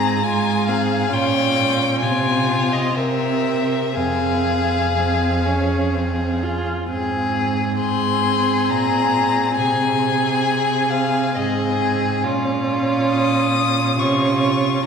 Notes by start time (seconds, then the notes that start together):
Already playing: G#2 C4 G#4 A#5
0.24 G#3 F4 G#5
0.67 C4 G#4 F5
1.12 A#2 C#4 F4 G5
2.00 C3 C4 F4 G#5
2.72 D#5
2.96 C3 C4 A#4 E5
3.95 F2 C4 G#4 F5
4.97 C4
5.46 C#4
5.95 C4
6.43 F4
6.90 G#2 C4 G#4
7.80 C4 G#4 C6
8.70 A#2 A#5
9.57 C3 C4 G#4 G#5
10.90 F5
11.35 G#2 C4 G#4 D#5
12.24 A#2 C#4 F4
13.10 D#6
13.97 C3 C#4 F4 C#6